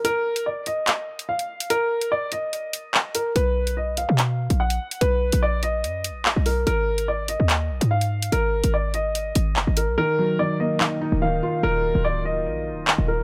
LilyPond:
<<
  \new Staff \with { instrumentName = "Grand piano" } { \time 4/4 \key ees \minor \tempo 4 = 145 bes'4 d''8 ees''4. f''4 | bes'4 d''8 ees''2 bes'8 | b'4 dis''8 f''4. fis''4 | b'4 d''8 dis''2 bes'8 |
bes'4 d''8 ees''4. f''4 | bes'4 d''8 ees''2 bes'8 | bes'4 d''8 ees''4. f''4 | bes'4 d''8 ees''2 bes'8 | }
  \new Staff \with { instrumentName = "Felt piano" } { \clef bass \time 4/4 \key ees \minor r1 | r1 | r1 | r1 |
r1 | r1 | ees8 ges8 ees8 bes8 ees8 ees'8 ees8 f'8 | r1 | }
  \new Staff \with { instrumentName = "808-style bass" } { \clef bass \time 4/4 \key ees \minor r1 | r1 | b,,4.~ b,,16 b,4 bes,,8. r8 | b,,8. bes,,4~ bes,,16 fis,8~ fis,32 bes,,8~ bes,,32 b,,8. |
aes,,4.~ aes,,16 ees,8. ces,16 aes,4~ aes,16 | aes,,8. aes,,4.~ aes,,16 aes,,8 ges,,16 aes,,8 ces,16 | r2 r8. d,,8. r8 | ees,,8. d,,4~ d,,16 bes,,8~ bes,,32 d,,8~ d,,32 ees,,8. | }
  \new DrumStaff \with { instrumentName = "Drums" } \drummode { \time 4/4 hh8. hh16 r8 hh8 <hc hh>8. hh16 r16 hh8 hh16 | hh8. hh16 r8 hh8 hh8 hh8 hc8 hh8 | hh8. hh16 r8 hh8 <hc hh>8. hh16 r16 hh8 hh16 | hh8. hh16 r8 hh8 hh8 hh8 hc8 hho8 |
hh8. hh16 r8 hh8 <hc hh>8. hh16 r16 hh8 hh16 | hh8. hh16 r8 hh8 hh8 hh8 hc8 hh8 | r4 r4 hc4 r4 | r4 r4 r4 hc4 | }
>>